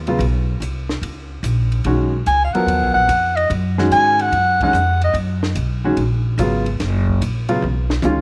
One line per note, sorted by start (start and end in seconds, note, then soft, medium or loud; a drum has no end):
0.00 0.18 D#2 medium
0.07 0.20 C#3 medium
0.07 0.20 F#3 soft
0.07 0.20 B3 medium
0.07 0.20 F4 medium
0.07 ride soft
0.19 0.59 B1 medium
0.19 ride medium
0.60 1.01 C2 medium
0.60 hi-hat pedal soft
0.60 ride medium
0.89 snare soft
1.02 1.42 C#2 medium
1.02 ride medium
1.43 1.83 A#1 medium
1.43 hi-hat pedal medium
1.43 ride medium
1.72 ride soft
1.84 2.25 B1 medium
1.84 2.11 D#3 medium
1.84 2.10 G#3 soft
1.84 2.11 C#4 soft
1.84 2.11 F#4 medium
1.84 ride medium
2.26 2.52 C#2 medium
2.26 2.44 G#5 medium
2.26 hi-hat pedal soft
2.26 ride medium
2.44 2.55 F5 medium
2.53 3.07 F3 medium
2.53 3.07 F#3 medium
2.53 3.07 B3 medium
2.53 3.07 A#4 medium
2.53 2.94 F#5 medium
2.53 muted upright bass stroke soft
2.53 ride soft
2.66 2.81 D#2 medium
2.66 ride medium
2.81 2.95 B1 soft
2.94 3.08 A#1 medium
2.94 3.38 F#5 medium
3.09 3.49 F2 medium
3.09 hi-hat pedal medium
3.09 ride medium
3.36 3.50 D#5 medium
3.36 ride soft
3.50 3.90 F#2 medium
3.50 ride medium
3.78 4.30 D#3 medium
3.78 4.30 G#3 medium
3.78 4.30 C#4 medium
3.78 4.31 F#4 medium
3.78 snare soft
3.90 4.31 G#2 medium
3.90 4.23 G#5 medium
3.90 hi-hat pedal soft
3.90 ride medium
4.19 4.61 F#5 medium
4.19 ride soft
4.32 4.72 F#2 medium
4.32 ride medium
4.60 4.73 D#3 medium
4.60 4.74 G#3 soft
4.60 4.74 C#4 medium
4.60 4.74 D#4 medium
4.60 5.00 F#5 medium
4.60 kick medium
4.60 ride medium
4.73 5.13 F2 medium
4.73 hi-hat pedal medium
5.01 5.16 D#5 medium
5.01 ride soft
5.13 5.54 F#2 medium
5.13 ride medium
5.43 snare medium
5.55 5.96 B1 medium
5.55 hi-hat pedal soft
5.55 ride medium
5.84 5.96 D#3 medium
5.84 5.97 G#3 medium
5.84 5.97 C#4 medium
5.84 5.97 F#4 medium
5.96 6.37 A#1 medium
5.96 ride medium
6.38 6.78 G#1 medium
6.38 6.64 C#3 medium
6.38 6.64 F#3 medium
6.38 6.64 B3 medium
6.38 6.64 F4 medium
6.38 hi-hat pedal medium
6.38 ride medium
6.66 ride soft
6.80 7.20 F#1 medium
6.80 snare soft
6.80 ride medium
7.07 kick medium
7.21 7.61 A#1 medium
7.21 hi-hat pedal medium
7.21 ride medium
7.49 7.61 C#3 medium
7.49 7.61 F#3 medium
7.49 7.61 B3 medium
7.49 7.61 F4 medium
7.49 ride soft
7.62 8.03 B1 medium
7.62 mid tom soft
7.90 snare medium
8.02 8.21 C#2 medium
8.02 8.21 D#3 medium
8.02 8.21 G#3 medium
8.02 8.21 C#4 medium
8.02 8.21 F4 medium
8.02 hi-hat pedal medium
8.02 mid tom medium